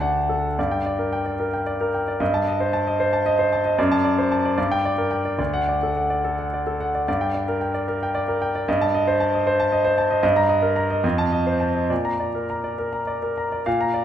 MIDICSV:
0, 0, Header, 1, 2, 480
1, 0, Start_track
1, 0, Key_signature, -2, "minor"
1, 0, Tempo, 554529
1, 501, Time_signature, 6, 3, 24, 8
1, 1445, Tempo, 528634
1, 4325, Tempo, 554017
1, 6725, Tempo, 525394
1, 9119, Key_signature, -2, "major"
1, 9605, Tempo, 574713
1, 12346, End_track
2, 0, Start_track
2, 0, Title_t, "Grand piano"
2, 0, Program_c, 0, 0
2, 0, Control_c, 0, 64, 127
2, 0, Note_on_c, 0, 38, 50
2, 0, Note_on_c, 0, 81, 61
2, 9, Note_on_c, 0, 78, 49
2, 10, Note_on_c, 0, 62, 42
2, 158, Note_off_c, 0, 81, 0
2, 254, Note_on_c, 0, 69, 42
2, 407, Note_off_c, 0, 78, 0
2, 408, Note_off_c, 0, 62, 0
2, 481, Note_off_c, 0, 38, 0
2, 499, Note_off_c, 0, 69, 0
2, 509, Note_on_c, 0, 43, 54
2, 509, Note_on_c, 0, 74, 50
2, 515, Control_c, 0, 64, 0
2, 618, Note_on_c, 0, 79, 51
2, 675, Control_c, 0, 64, 127
2, 694, Note_off_c, 0, 74, 0
2, 744, Note_on_c, 0, 74, 42
2, 807, Note_off_c, 0, 79, 0
2, 855, Note_on_c, 0, 70, 44
2, 929, Note_off_c, 0, 74, 0
2, 974, Note_on_c, 0, 79, 48
2, 1044, Note_off_c, 0, 70, 0
2, 1087, Note_on_c, 0, 74, 41
2, 1163, Note_off_c, 0, 79, 0
2, 1209, Note_on_c, 0, 70, 48
2, 1279, Note_off_c, 0, 74, 0
2, 1327, Note_on_c, 0, 79, 50
2, 1398, Note_off_c, 0, 70, 0
2, 1441, Note_on_c, 0, 74, 49
2, 1518, Note_off_c, 0, 79, 0
2, 1570, Note_on_c, 0, 70, 50
2, 1637, Note_off_c, 0, 74, 0
2, 1693, Note_on_c, 0, 79, 46
2, 1762, Note_off_c, 0, 70, 0
2, 1817, Note_on_c, 0, 74, 46
2, 1883, Note_off_c, 0, 79, 0
2, 1897, Note_off_c, 0, 43, 0
2, 1928, Note_on_c, 0, 43, 64
2, 1930, Note_on_c, 0, 75, 54
2, 1933, Note_off_c, 0, 74, 0
2, 1947, Control_c, 0, 64, 0
2, 2053, Note_on_c, 0, 81, 59
2, 2104, Control_c, 0, 64, 127
2, 2122, Note_off_c, 0, 75, 0
2, 2177, Note_on_c, 0, 75, 52
2, 2244, Note_off_c, 0, 81, 0
2, 2293, Note_on_c, 0, 72, 50
2, 2365, Note_off_c, 0, 75, 0
2, 2410, Note_on_c, 0, 81, 56
2, 2482, Note_off_c, 0, 72, 0
2, 2537, Note_on_c, 0, 75, 52
2, 2599, Note_off_c, 0, 81, 0
2, 2652, Note_on_c, 0, 72, 60
2, 2722, Note_off_c, 0, 75, 0
2, 2770, Note_on_c, 0, 81, 59
2, 2839, Note_off_c, 0, 72, 0
2, 2889, Note_on_c, 0, 75, 63
2, 2957, Note_off_c, 0, 81, 0
2, 3007, Note_on_c, 0, 72, 57
2, 3075, Note_off_c, 0, 75, 0
2, 3131, Note_on_c, 0, 81, 58
2, 3193, Note_off_c, 0, 72, 0
2, 3244, Note_on_c, 0, 75, 54
2, 3315, Note_off_c, 0, 81, 0
2, 3320, Note_off_c, 0, 43, 0
2, 3360, Note_off_c, 0, 75, 0
2, 3365, Note_on_c, 0, 42, 75
2, 3366, Note_on_c, 0, 74, 61
2, 3373, Control_c, 0, 64, 0
2, 3484, Note_on_c, 0, 81, 69
2, 3515, Control_c, 0, 64, 127
2, 3552, Note_off_c, 0, 74, 0
2, 3603, Note_on_c, 0, 74, 55
2, 3672, Note_off_c, 0, 81, 0
2, 3729, Note_on_c, 0, 72, 52
2, 3792, Note_off_c, 0, 74, 0
2, 3848, Note_on_c, 0, 81, 61
2, 3916, Note_off_c, 0, 72, 0
2, 3972, Note_on_c, 0, 74, 54
2, 4037, Note_off_c, 0, 81, 0
2, 4063, Note_off_c, 0, 42, 0
2, 4070, Note_off_c, 0, 74, 0
2, 4084, Note_on_c, 0, 74, 58
2, 4089, Note_on_c, 0, 43, 60
2, 4099, Control_c, 0, 64, 0
2, 4211, Note_on_c, 0, 79, 77
2, 4245, Control_c, 0, 64, 127
2, 4278, Note_off_c, 0, 74, 0
2, 4335, Note_on_c, 0, 74, 58
2, 4399, Note_off_c, 0, 79, 0
2, 4445, Note_on_c, 0, 70, 45
2, 4517, Note_off_c, 0, 74, 0
2, 4557, Note_on_c, 0, 79, 55
2, 4631, Note_off_c, 0, 70, 0
2, 4679, Note_on_c, 0, 74, 42
2, 4748, Note_off_c, 0, 79, 0
2, 4781, Note_off_c, 0, 43, 0
2, 4784, Note_off_c, 0, 74, 0
2, 4797, Note_on_c, 0, 38, 56
2, 4797, Note_on_c, 0, 74, 53
2, 4815, Control_c, 0, 64, 0
2, 4926, Note_on_c, 0, 78, 54
2, 4974, Control_c, 0, 64, 127
2, 4994, Note_off_c, 0, 74, 0
2, 5054, Note_on_c, 0, 74, 43
2, 5123, Note_off_c, 0, 78, 0
2, 5182, Note_on_c, 0, 69, 39
2, 5249, Note_off_c, 0, 74, 0
2, 5298, Note_on_c, 0, 78, 41
2, 5374, Note_off_c, 0, 69, 0
2, 5416, Note_on_c, 0, 74, 44
2, 5492, Note_off_c, 0, 78, 0
2, 5541, Note_on_c, 0, 69, 44
2, 5611, Note_off_c, 0, 74, 0
2, 5666, Note_on_c, 0, 78, 40
2, 5733, Note_off_c, 0, 69, 0
2, 5793, Note_on_c, 0, 74, 44
2, 5856, Note_off_c, 0, 78, 0
2, 5907, Note_on_c, 0, 69, 41
2, 5979, Note_off_c, 0, 74, 0
2, 6026, Note_on_c, 0, 78, 44
2, 6095, Note_off_c, 0, 69, 0
2, 6149, Note_on_c, 0, 74, 39
2, 6213, Note_off_c, 0, 78, 0
2, 6222, Note_off_c, 0, 38, 0
2, 6254, Note_off_c, 0, 74, 0
2, 6267, Note_on_c, 0, 43, 58
2, 6267, Note_on_c, 0, 74, 52
2, 6275, Control_c, 0, 64, 0
2, 6377, Note_on_c, 0, 79, 57
2, 6431, Control_c, 0, 64, 127
2, 6450, Note_off_c, 0, 74, 0
2, 6492, Note_on_c, 0, 74, 44
2, 6564, Note_off_c, 0, 79, 0
2, 6611, Note_on_c, 0, 70, 44
2, 6679, Note_off_c, 0, 74, 0
2, 6725, Note_on_c, 0, 79, 46
2, 6800, Note_off_c, 0, 70, 0
2, 6845, Note_on_c, 0, 74, 48
2, 6921, Note_off_c, 0, 79, 0
2, 6969, Note_on_c, 0, 70, 48
2, 7041, Note_off_c, 0, 74, 0
2, 7106, Note_on_c, 0, 79, 53
2, 7163, Note_off_c, 0, 70, 0
2, 7214, Note_on_c, 0, 74, 59
2, 7292, Note_off_c, 0, 79, 0
2, 7337, Note_on_c, 0, 70, 50
2, 7406, Note_off_c, 0, 74, 0
2, 7461, Note_on_c, 0, 79, 54
2, 7528, Note_off_c, 0, 70, 0
2, 7585, Note_on_c, 0, 74, 50
2, 7650, Note_off_c, 0, 79, 0
2, 7663, Note_off_c, 0, 43, 0
2, 7700, Note_off_c, 0, 74, 0
2, 7704, Note_on_c, 0, 75, 61
2, 7706, Note_on_c, 0, 43, 72
2, 7712, Control_c, 0, 64, 0
2, 7825, Note_on_c, 0, 81, 65
2, 7855, Control_c, 0, 64, 127
2, 7890, Note_off_c, 0, 75, 0
2, 7943, Note_on_c, 0, 75, 55
2, 8009, Note_off_c, 0, 81, 0
2, 8062, Note_on_c, 0, 72, 54
2, 8128, Note_off_c, 0, 75, 0
2, 8178, Note_on_c, 0, 81, 61
2, 8247, Note_off_c, 0, 72, 0
2, 8305, Note_on_c, 0, 75, 54
2, 8365, Note_off_c, 0, 81, 0
2, 8422, Note_on_c, 0, 72, 61
2, 8488, Note_off_c, 0, 75, 0
2, 8539, Note_on_c, 0, 81, 59
2, 8606, Note_off_c, 0, 72, 0
2, 8652, Note_on_c, 0, 75, 62
2, 8722, Note_off_c, 0, 81, 0
2, 8766, Note_on_c, 0, 72, 62
2, 8838, Note_off_c, 0, 75, 0
2, 8889, Note_on_c, 0, 81, 59
2, 8953, Note_off_c, 0, 72, 0
2, 9004, Note_on_c, 0, 75, 55
2, 9075, Note_off_c, 0, 81, 0
2, 9089, Note_off_c, 0, 43, 0
2, 9102, Note_off_c, 0, 75, 0
2, 9116, Note_on_c, 0, 75, 67
2, 9117, Note_on_c, 0, 43, 76
2, 9134, Control_c, 0, 64, 0
2, 9239, Note_on_c, 0, 82, 69
2, 9272, Control_c, 0, 64, 127
2, 9310, Note_off_c, 0, 75, 0
2, 9355, Note_on_c, 0, 75, 56
2, 9433, Note_off_c, 0, 82, 0
2, 9475, Note_on_c, 0, 70, 50
2, 9554, Note_off_c, 0, 75, 0
2, 9603, Note_on_c, 0, 82, 57
2, 9671, Note_off_c, 0, 70, 0
2, 9722, Note_on_c, 0, 75, 55
2, 9788, Note_off_c, 0, 82, 0
2, 9814, Note_off_c, 0, 43, 0
2, 9823, Note_off_c, 0, 75, 0
2, 9834, Note_on_c, 0, 41, 68
2, 9836, Note_on_c, 0, 75, 57
2, 9850, Control_c, 0, 64, 0
2, 9955, Note_on_c, 0, 81, 68
2, 9994, Control_c, 0, 64, 127
2, 10023, Note_off_c, 0, 75, 0
2, 10071, Note_on_c, 0, 75, 55
2, 10142, Note_off_c, 0, 81, 0
2, 10191, Note_on_c, 0, 72, 47
2, 10261, Note_off_c, 0, 75, 0
2, 10306, Note_on_c, 0, 81, 49
2, 10383, Note_off_c, 0, 72, 0
2, 10427, Note_on_c, 0, 75, 42
2, 10503, Note_off_c, 0, 81, 0
2, 10532, Note_off_c, 0, 41, 0
2, 10552, Note_on_c, 0, 74, 47
2, 10553, Note_off_c, 0, 75, 0
2, 10555, Note_on_c, 0, 46, 52
2, 10569, Control_c, 0, 64, 0
2, 10678, Note_on_c, 0, 82, 53
2, 10699, Control_c, 0, 64, 127
2, 10752, Note_off_c, 0, 74, 0
2, 10804, Note_on_c, 0, 74, 43
2, 10876, Note_off_c, 0, 82, 0
2, 10929, Note_on_c, 0, 70, 40
2, 10999, Note_off_c, 0, 74, 0
2, 11053, Note_on_c, 0, 82, 42
2, 11121, Note_off_c, 0, 70, 0
2, 11171, Note_on_c, 0, 74, 40
2, 11243, Note_off_c, 0, 82, 0
2, 11292, Note_on_c, 0, 70, 43
2, 11364, Note_off_c, 0, 74, 0
2, 11412, Note_on_c, 0, 82, 44
2, 11487, Note_off_c, 0, 70, 0
2, 11533, Note_on_c, 0, 74, 48
2, 11610, Note_off_c, 0, 82, 0
2, 11660, Note_on_c, 0, 70, 43
2, 11734, Note_off_c, 0, 74, 0
2, 11786, Note_on_c, 0, 82, 44
2, 11859, Note_off_c, 0, 70, 0
2, 11907, Note_on_c, 0, 74, 38
2, 11978, Note_off_c, 0, 82, 0
2, 11991, Note_off_c, 0, 46, 0
2, 12024, Note_off_c, 0, 74, 0
2, 12024, Note_on_c, 0, 77, 60
2, 12027, Note_on_c, 0, 46, 68
2, 12040, Control_c, 0, 64, 0
2, 12146, Note_on_c, 0, 82, 61
2, 12193, Control_c, 0, 64, 127
2, 12207, Note_off_c, 0, 77, 0
2, 12256, Note_on_c, 0, 74, 46
2, 12324, Note_off_c, 0, 82, 0
2, 12346, Note_off_c, 0, 46, 0
2, 12346, Note_off_c, 0, 74, 0
2, 12346, End_track
0, 0, End_of_file